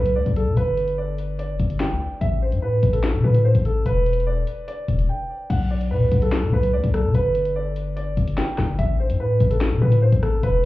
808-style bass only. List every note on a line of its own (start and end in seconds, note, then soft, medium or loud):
0.00 0.17 B1 loud
0.16 0.26 D2 loud
0.26 0.48 B1 loud
0.47 0.56 B2 medium
0.57 1.56 G1 loud
1.60 1.92 G1 loud
1.91 2.00 D2 loud
2.21 2.54 A1 loud
2.52 2.81 A2 loud
2.83 3.15 A1 loud
3.14 3.24 C3 loud
3.24 3.54 A2 loud
3.55 3.84 A1 loud
3.86 4.45 E1 loud
4.88 5.09 E1 loud
5.50 5.93 B1 loud
5.91 6.03 B2 loud
6.01 6.11 B1 loud
6.12 6.44 B1 loud
6.43 6.52 B2 loud
6.53 6.75 B1 loud
6.73 6.83 D2 loud
6.84 7.06 B1 loud
7.04 7.14 B2 loud
7.14 8.13 G1 loud
8.17 8.37 G1 loud
8.58 8.78 G1 loud
8.79 9.11 A1 loud
9.10 9.39 A2 loud
9.40 9.73 A1 loud
9.71 9.81 C3 loud
9.82 10.11 A2 loud
10.12 10.42 A1 loud
10.43 10.65 E1 loud